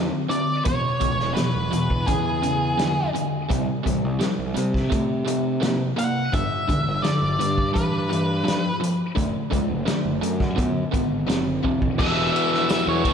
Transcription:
Already playing: F#2 D3 C4
0.28 D3 C4 D5, closed hi-hat
0.65 E1 E2 B2 C#5, kick, closed hi-hat
1.00 C#2 E2 B2, kick, closed hi-hat
1.19 E1, snare
1.34 E2 B2 B4, snare, closed hi-hat
1.56 E1
1.71 E2 B2, closed hi-hat
1.90 kick
2.06 E2 C#3 G#4, kick, closed hi-hat
2.42 E2 C#3, closed hi-hat
2.77 E2 D3, snare, closed hi-hat
3.13 E2 D3, closed hi-hat
3.49 C2 C3 G3, kick, closed hi-hat
3.83 A1 C3 G3, kick, closed hi-hat
4.04 C2
4.19 C3 G3, snare, closed hi-hat
4.39 C2
4.54 C3 G3, closed hi-hat
4.74 kick, snare
4.90 C3 A3, kick, closed hi-hat
5.25 C3 A3, closed hi-hat
5.60 C3 A#3, snare, closed hi-hat
5.96 C3 A#3 F#5, closed hi-hat
6.33 G1 G2 D3 E5, kick, closed hi-hat
6.68 E1 G2 D3, kick, closed hi-hat
6.88 G1
7.02 G2 D3 D5, snare, closed hi-hat
7.23 G1
7.39 G2 D3, closed hi-hat
7.58 kick
7.73 G2 E3 B4, kick, closed hi-hat
8.09 G2 E3, closed hi-hat
8.44 G2 F3
8.48 snare, closed hi-hat
8.80 G2 F3, closed hi-hat
9.15 F#1 D3 A3, kick, closed hi-hat
9.50 C#2 D3 A3, kick, closed hi-hat
9.70 F#1
9.85 D3 A3, snare, closed hi-hat
10.05 F#1
10.21 F#2 D3 A3, closed hi-hat
10.40 kick, snare
10.56 D3 B3, kick, closed hi-hat
10.91 G#1 D3 B3, kick, closed hi-hat
11.28 F#1 D3 C4, snare, closed hi-hat
11.64 E1 D3 C4, kick
11.82 kick
11.98 E1 E2 B2 E3 E5, kick, crash
12.36 ride
12.54 snare
12.69 E5, snare, ride, tambourine
12.87 E2 C#5
13.04 B2 E3, kick, ride
13.08 E2

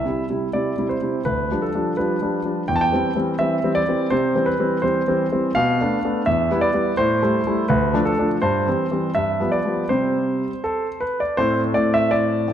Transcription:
Already playing: E5
0.05 C3 G3 E4
0.30 C3 G3 E4
0.53 C3 G3 E4 D5
0.78 C3 G3 E4
0.89 C5
1.02 C3 G3 E4
1.25 D2 B4
1.51 F3 G3 D4
1.62 A4
1.74 F3 G3 D4
1.97 F3 G3 D4 B4
2.21 F3 G3 D4
2.44 F3 G3 D4
2.68 E2 G5
2.76 A5
2.81 G5
2.92 E3 G3 C4
3.15 E3 G3 C4
3.39 E3 G3 C4 E5
3.63 E3 G3 C4
3.75 D5
3.88 E3 G3 C4
4.10 C3 C5
4.35 E3 G3 C4
4.46 B4
4.59 E3 G3 C4
4.82 E3 G3 C4 C5
5.07 E3 G3 C4
5.32 E3 G3 C4
5.55 B2 F5
5.81 A3 B3 D4
6.05 A3 B3 D4
6.26 E2 E5
6.51 G3 B3 E4
6.61 D5
6.74 G3 B3 E4
6.97 A2 C5
7.22 G3 A3 E4
7.47 G3 A3 E4
7.69 D2 B4
7.94 F3 A3 D4
8.05 A4
8.18 F3 A3 D4
8.42 G2 C5
8.67 E3 G3 C4
8.91 E3 G3 C4
9.15 G2 E5
9.40 F3 G3 B3
9.52 D5
9.65 F3 G3 B3
9.89 C3 G3 C4 C5
10.64 A4
11.01 B4
11.20 D5
11.37 A2 A3 C4 C5
11.74 A2 D5
11.94 E5
12.11 A2 D5
12.48 A2

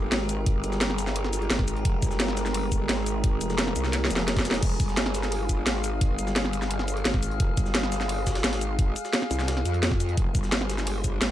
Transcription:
Already playing: G1 G#3 G4 A#4
0.12 G#1, snare, closed hi-hat
0.20 snare
0.29 closed hi-hat, shaker
0.46 kick, closed hi-hat
0.64 G1, closed hi-hat, shaker
0.72 snare, shaker
0.81 snare, closed hi-hat, shaker
0.90 snare
0.98 closed hi-hat, shaker
1.07 snare, shaker
1.16 closed hi-hat
1.24 snare
1.33 closed hi-hat, shaker
1.42 closed hi-hat
1.50 G#1, snare, closed hi-hat
1.59 kick, snare
1.68 closed hi-hat, shaker
1.77 closed hi-hat
1.85 F1, kick, closed hi-hat
2.02 G1, kick, closed hi-hat, shaker
2.11 snare, shaker
2.20 snare, closed hi-hat, shaker
2.28 snare
2.37 snare, closed hi-hat, shaker
2.46 snare, closed hi-hat, shaker
2.54 G#4, closed hi-hat, open hi-hat
2.72 kick, closed hi-hat, shaker
2.89 G#1, snare, closed hi-hat
2.98 snare
3.06 closed hi-hat, shaker
3.24 kick, closed hi-hat
3.41 F1, closed hi-hat, shaker
3.50 snare, shaker
3.58 snare, closed hi-hat, shaker
3.67 snare
3.76 C2, closed hi-hat, shaker
3.84 snare, shaker
3.93 snare, closed hi-hat
4.05 snare
4.10 F1, closed hi-hat, shaker
4.16 snare, closed hi-hat
4.28 snare, closed hi-hat
4.37 kick, snare, closed hi-hat
4.39 snare
4.45 snare, closed hi-hat, shaker
4.51 snare
4.54 snare, closed hi-hat
4.63 F1 F5, kick, closed hi-hat, crash
4.80 G1, kick, closed hi-hat, shaker
4.89 snare, shaker
4.97 snare, closed hi-hat, shaker
5.06 snare
5.15 snare, closed hi-hat, shaker
5.23 snare, closed hi-hat, shaker
5.32 closed hi-hat, open hi-hat
5.49 kick, closed hi-hat, shaker
5.67 G#1, snare, closed hi-hat
5.75 snare
5.84 closed hi-hat, shaker
6.01 kick, closed hi-hat
6.19 G1, closed hi-hat, shaker
6.27 snare, shaker
6.36 snare, closed hi-hat, shaker
6.45 snare
6.53 closed hi-hat, shaker
6.62 snare, shaker
6.71 closed hi-hat
6.79 snare
6.88 closed hi-hat, shaker
6.97 closed hi-hat
7.05 G#1, snare, closed hi-hat
7.14 kick, snare
7.23 closed hi-hat, shaker
7.31 closed hi-hat
7.40 F1, kick, closed hi-hat
7.57 G1, kick, closed hi-hat, shaker
7.66 snare, shaker
7.75 snare, closed hi-hat, shaker
7.83 snare
7.92 snare, closed hi-hat, shaker
8.01 snare, closed hi-hat, shaker
8.09 closed hi-hat, open hi-hat
8.27 kick, snare, closed hi-hat, shaker
8.35 snare, closed hi-hat
8.44 G#1, snare, closed hi-hat
8.53 snare, closed hi-hat
8.61 closed hi-hat, shaker
8.79 kick, closed hi-hat
8.96 closed hi-hat, shaker
9.05 snare, shaker
9.13 snare, closed hi-hat, shaker
9.22 snare
9.31 C2, closed hi-hat, shaker
9.39 snare, shaker
9.48 snare, closed hi-hat
9.57 snare
9.65 F2, closed hi-hat, shaker
9.74 closed hi-hat
9.83 snare, closed hi-hat
9.91 kick, snare
10.00 closed hi-hat, shaker
10.09 closed hi-hat
10.17 F1 C5, kick, closed hi-hat
10.35 G1, kick, closed hi-hat, shaker
10.44 snare, shaker
10.52 snare, closed hi-hat, shaker
10.61 snare
10.70 snare, closed hi-hat, shaker
10.78 snare, closed hi-hat, shaker
10.87 closed hi-hat, open hi-hat
11.04 kick, closed hi-hat, shaker
11.21 G#1, snare, closed hi-hat

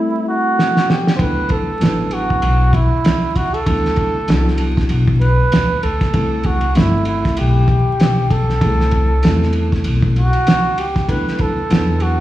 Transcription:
Already playing: G3 A3 C4 E4 A4
0.28 F#4
0.59 snare
0.77 snare
0.90 G4, snare
1.07 snare
1.16 D2 F#3 C5, kick, ride
1.20 B3 D4 E4 A4 B4
1.49 A4, kick, ride
1.80 A1 F#3 B3 D4 E4 B4, snare, hi-hat pedal, ride
2.11 F#4, ride
2.30 kick
2.42 B1, ride
2.73 E4, kick, ride
3.04 C#2, snare, hi-hat pedal, ride
3.36 F#4, kick, ride
3.54 A4, ride
3.66 D2 F#3 B3 D4 E4 A4, kick, ride
3.85 snare
3.96 kick, ride
4.28 C2 F#3 B3 D4 E4 F#4, snare, hi-hat pedal, ride
4.48 snare
4.58 ride
4.77 kick, snare, ride
4.89 B1, ride
5.07 kick
5.21 B4, ride
5.39 muted upright bass stroke
5.52 D2, snare, hi-hat pedal, ride
5.83 D2 A4, ride
6.01 kick, snare, ride
6.14 C2 G3 A3 C4 E4 A4, kick, ride
6.43 F#4, kick, ride
6.61 ride
6.75 G1 G3 A3 C4 E4 A4, snare, hi-hat pedal, ride
7.05 E4, ride
7.25 kick, snare, ride
7.37 B1 G4, ride
7.68 kick, ride
7.88 muted upright bass stroke
8.00 B1, snare, hi-hat pedal, ride
8.30 A4, kick, ride
8.50 snare
8.60 C2 G3 A3 C4 E4 G#4, kick, ride
8.68 A4
8.80 snare
8.91 kick, ride
9.23 E2 G3 A3 C4 E4 A4, snare, hi-hat pedal, ride
9.43 snare
9.53 ride
9.72 kick, snare, ride
9.84 B1, ride
10.02 kick
10.16 F#4, ride
10.33 ride
10.47 C#2, snare, hi-hat pedal, ride
10.78 G4, ride
10.96 kick, snare, ride
11.08 D2 F#3 B3 D4 E4 A4 B4, kick, ride
11.28 snare
11.39 A4, kick, ride
11.70 E2 F#3 B3 D4 E4 B4, snare, hi-hat pedal, ride
12.00 F#4, ride

